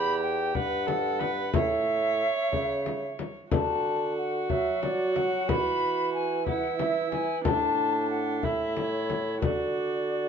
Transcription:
0.00 0.53 E2 medium
0.00 0.56 G4 medium
0.00 0.21 B5 loud
0.22 0.57 G5 loud
0.55 1.51 G2 medium
0.55 0.88 B4 medium
0.55 1.53 F#5 loud
0.55 frame drum soft
0.87 1.21 A4 medium
0.87 frame drum medium
1.20 1.56 B4 medium
1.20 frame drum medium
1.53 2.23 A2 medium
1.53 3.32 C#5 medium
1.53 3.16 E5 loud
1.53 frame drum medium
2.52 3.15 C#3 medium
2.52 frame drum soft
2.86 frame drum soft
3.19 frame drum medium
3.51 4.46 D3 medium
3.51 6.43 F#4 medium
3.51 4.13 A5 medium
3.51 frame drum medium
4.17 4.52 F#5 medium
4.50 5.51 F#3 medium
4.50 4.83 E5 medium
4.50 frame drum soft
4.83 5.18 D5 medium
4.83 frame drum medium
5.16 5.50 F#5 medium
5.16 frame drum medium
5.49 7.45 E3 medium
5.49 6.13 B5 loud
5.49 frame drum medium
6.14 6.46 G#5 medium
6.47 7.43 E4 medium
6.47 6.79 F#5 medium
6.47 frame drum soft
6.79 7.11 E5 medium
6.79 frame drum medium
7.12 7.43 G#5 medium
7.12 frame drum medium
7.44 8.42 A2 medium
7.44 8.45 D4 medium
7.44 8.08 A5 loud
7.44 frame drum medium
8.10 8.45 F#5 medium
8.43 9.44 A2 medium
8.43 9.42 E4 medium
8.43 8.76 E5 medium
8.43 frame drum soft
8.77 8.82 E5 medium
8.77 frame drum soft
8.81 9.42 C#5 medium
9.10 frame drum medium
9.42 10.29 D3 medium
9.42 10.29 F#4 medium
9.42 10.29 D5 medium
9.42 frame drum medium

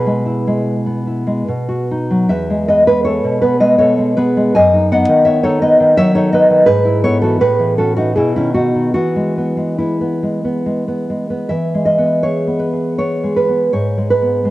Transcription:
0.00 1.43 B2 medium
0.00 1.85 G#4 medium
0.00 1.85 B4 medium
0.07 0.46 G#3 medium
0.26 1.06 E4 medium
0.47 1.26 G#3 medium
0.86 1.46 B3 medium
1.07 1.47 E4 soft
1.27 1.47 G#3 medium
1.48 2.27 B2 medium
1.69 2.29 F#4 medium
1.91 2.30 D#4 medium
2.11 2.30 F#3 medium
2.29 3.24 E2 medium
2.29 2.65 B4 medium
2.29 2.66 E5 medium
2.50 2.86 G#3 medium
2.68 3.41 B3 soft
2.68 2.86 B4 medium
2.68 2.86 D#5 medium
2.87 3.59 G#3 medium
2.87 3.04 G#4 medium
2.87 3.04 B4 loud
3.04 3.39 A4 medium
3.04 3.39 C#5 medium
3.24 3.78 B2 medium
3.42 4.16 B3 medium
3.42 3.59 G#4 medium
3.42 3.60 B4 medium
3.60 3.97 G#3 medium
3.60 3.78 B4 medium
3.60 3.78 D#5 medium
3.78 4.54 B2 medium
3.78 4.14 A4 medium
3.78 4.14 C#5 medium
3.98 4.36 G#3 medium
4.17 4.54 B3 medium
4.17 4.52 G#4 medium
4.17 4.52 B4 medium
4.37 4.54 G#3 medium
4.55 5.08 F#2 medium
4.55 4.88 D#5 medium
4.55 4.89 G#5 medium
4.74 5.43 D#4 medium
4.92 5.61 B3 medium
4.92 5.24 D#5 medium
4.92 5.24 F#5 medium
5.09 5.79 D#3 medium
5.25 5.42 C#5 medium
5.25 5.43 E5 loud
5.43 6.14 D#4 medium
5.43 5.60 A4 medium
5.43 5.61 C#5 medium
5.62 5.97 B3 medium
5.62 5.95 B4 medium
5.62 5.96 D#5 medium
5.80 6.49 D#3 medium
5.97 6.68 F#3 medium
5.97 6.14 C#5 medium
5.97 6.15 E5 loud
6.15 6.67 D#4 medium
6.15 6.32 A4 medium
6.15 6.32 C#5 loud
6.33 6.68 B3 medium
6.33 6.65 B4 medium
6.33 6.66 D#5 loud
6.50 6.66 D#3 medium
6.66 7.37 G#2 medium
6.66 7.00 G#4 medium
6.66 7.01 B4 loud
6.85 7.39 E4 medium
7.04 7.40 B3 medium
7.04 7.20 A4 medium
7.04 7.21 C#5 loud
7.22 7.40 E3 medium
7.22 7.39 F#4 medium
7.22 7.40 A4 medium
7.41 8.13 A2 medium
7.41 7.75 G#4 medium
7.41 7.76 B4 loud
7.60 7.96 E3 medium
7.78 8.15 C#4 medium
7.78 7.95 F#4 medium
7.78 7.96 A4 medium
7.96 8.15 E3 medium
7.96 8.14 D#4 medium
7.96 8.15 F#4 medium
8.16 8.92 B2 medium
8.16 8.34 E4 medium
8.16 8.34 G#4 medium
8.36 8.73 D#3 medium
8.36 8.54 C#4 medium
8.36 8.54 E4 medium
8.54 8.94 B3 medium
8.54 8.91 D#4 medium
8.54 8.92 F#4 medium
8.74 8.94 D#3 soft
8.94 11.45 E3 medium
8.94 9.36 B3 medium
8.94 9.74 F#4 medium
9.16 9.56 G#3 medium
9.37 9.78 B3 medium
9.57 10.22 G#3 soft
9.78 10.00 B3 soft
9.78 10.61 E4 medium
10.01 10.43 B3 soft
10.23 10.65 G#3 soft
10.44 10.87 B3 soft
10.66 11.09 G#3 soft
10.88 11.29 B3 soft
11.10 11.50 G#3 soft
11.30 11.49 B3 soft
11.49 13.70 E3 medium
11.49 11.85 E5 medium
11.74 12.85 G#3 soft
11.85 12.21 D#5 medium
11.98 12.46 B3 soft
12.23 12.72 G#4 soft
12.23 12.58 C#5 medium
12.47 12.97 B3 soft
12.59 12.96 B4 medium
12.73 13.74 G#4 soft
12.98 13.47 B3 soft
12.98 13.34 C#5 medium
13.24 13.74 G#3 soft
13.36 13.72 B4 medium
13.48 13.73 B3 soft
13.73 14.50 G#2 medium
13.73 14.08 C#5 medium
13.98 14.44 G#3 soft
14.10 14.50 B4 medium
14.22 14.50 B3 soft
14.45 14.50 G#3 soft

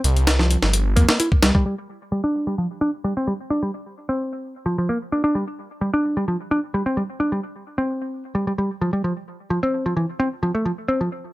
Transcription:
0.04 0.57 C2 loud
0.04 closed hi-hat medium
0.17 closed hi-hat soft
0.27 snare loud
0.27 closed hi-hat medium
0.39 0.84 F3 medium
0.39 snare soft
0.51 closed hi-hat medium
0.63 0.98 G1 loud
0.63 snare medium
0.73 closed hi-hat medium
0.96 1.05 F2 medium
0.96 1.07 A#3 medium
0.96 kick loud
0.96 closed hi-hat medium
1.09 1.19 A#3 medium
1.09 snare loud
1.20 1.28 E4 medium
1.20 closed hi-hat medium
1.32 kick medium
1.43 1.52 C2 medium
1.43 1.54 G3 medium
1.43 snare loud
1.43 closed hi-hat medium
1.55 1.65 G3 loud
1.55 kick medium
1.66 1.74 G3 medium
2.12 2.20 G3 medium
2.24 2.46 D4 loud
2.47 2.54 G3 medium
2.58 2.66 F3 medium
2.81 2.89 D4 loud
3.04 3.12 G3 medium
3.17 3.26 C4 medium
3.27 3.32 G3 medium
3.50 3.61 D4 medium
3.63 3.70 G3 medium
4.09 4.54 C4 medium
4.66 4.77 F3 medium
4.78 4.88 F3 medium
4.89 4.97 A#3 medium
5.12 5.23 D4 medium
5.24 5.34 D4 loud
5.35 5.43 G3 medium
5.81 5.89 G3 medium
5.94 6.15 D4 medium
6.17 6.24 G3 medium
6.28 6.36 F3 medium
6.51 6.59 D4 loud
6.74 6.82 G3 medium
6.86 6.96 C4 medium
6.97 7.02 G3 medium
7.20 7.31 D4 medium
7.32 7.39 G3 medium
7.78 8.23 C4 medium
8.35 8.46 G3 medium
8.47 8.52 G3 medium
8.58 8.69 G3 medium
8.81 8.92 F3 medium
8.93 9.03 G3 medium
9.04 9.12 F3 medium
9.50 9.58 F3 medium
9.63 9.85 C4 medium
9.86 9.93 F3 medium
9.97 10.05 E3 medium
10.20 10.28 C4 loud
10.43 10.51 F3 medium
10.55 10.65 A3 medium
10.65 10.70 F3 medium
10.88 11.00 C4 medium
11.01 11.08 F3 medium

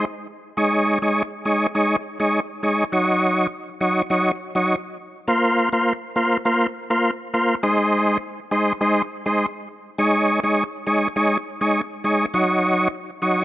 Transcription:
0.57 0.99 G#3 medium
0.57 0.99 D#4 medium
0.57 0.99 C#5 medium
1.02 1.23 G#3 medium
1.02 1.23 D#4 medium
1.02 1.23 C#5 medium
1.45 1.67 G#3 medium
1.45 1.67 D#4 medium
1.45 1.67 C#5 medium
1.75 1.96 G#3 medium
1.75 1.96 D#4 medium
1.75 1.97 C#5 loud
2.20 2.40 G#3 medium
2.20 2.40 D#4 medium
2.20 2.40 C#5 medium
2.63 2.84 G#3 medium
2.63 2.85 D#4 medium
2.63 2.85 C#5 medium
2.92 3.47 F#3 medium
2.92 3.47 D#4 medium
2.92 3.47 C#5 loud
3.81 4.02 F#3 medium
3.81 4.02 D#4 medium
3.81 4.02 C#5 medium
4.10 4.32 F#3 medium
4.10 4.32 D#4 medium
4.10 4.32 C#5 loud
4.55 4.75 F#3 medium
4.55 4.76 D#4 medium
4.55 4.76 C#5 medium
5.28 5.69 A#3 medium
5.28 5.69 F4 medium
5.28 5.69 C5 loud
5.73 5.93 A#3 medium
5.73 5.93 F4 medium
5.73 5.93 C5 medium
6.16 6.37 A#3 medium
6.16 6.37 F4 medium
6.16 6.38 C5 medium
6.45 6.67 A#3 medium
6.45 6.67 F4 medium
6.45 6.67 C5 loud
6.90 7.11 A#3 medium
6.90 7.11 F4 medium
6.90 7.11 C5 medium
7.34 7.55 A#3 medium
7.34 7.55 F4 medium
7.34 7.55 C5 medium
7.63 8.18 G#3 medium
7.63 8.18 D#4 medium
7.63 8.18 C5 loud
8.51 8.73 G#3 medium
8.51 8.73 D#4 medium
8.51 8.73 C5 medium
8.81 9.02 G#3 medium
8.81 9.02 D#4 medium
8.81 9.02 C5 loud
9.26 9.46 G#3 medium
9.26 9.46 D#4 medium
9.26 9.46 C5 medium
9.98 10.40 G#3 medium
9.98 10.40 D#4 medium
9.98 10.40 C#5 loud
10.43 10.64 G#3 medium
10.43 10.64 D#4 medium
10.43 10.64 C#5 medium
10.87 11.08 G#3 medium
10.87 11.08 D#4 medium
10.87 11.08 C#5 medium
11.16 11.37 G#3 medium
11.16 11.38 D#4 medium
11.16 11.38 C#5 loud
11.61 11.81 G#3 medium
11.61 11.81 D#4 medium
11.61 11.82 C#5 medium
12.04 12.26 G#3 medium
12.04 12.26 D#4 medium
12.04 12.26 C#5 medium
12.34 12.88 F#3 medium
12.34 12.88 D#4 medium
12.34 12.89 C#5 loud
13.22 13.43 F#3 medium
13.22 13.43 D#4 medium
13.22 13.44 C#5 medium

